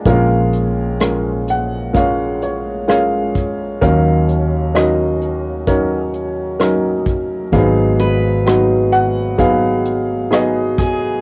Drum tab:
HH |xxxxxxxx|xxxxxxxx|xxxxxxxx|
SD |--r---r-|--r---r-|--r---r-|
BD |o---o--o|o---o--o|o---o--o|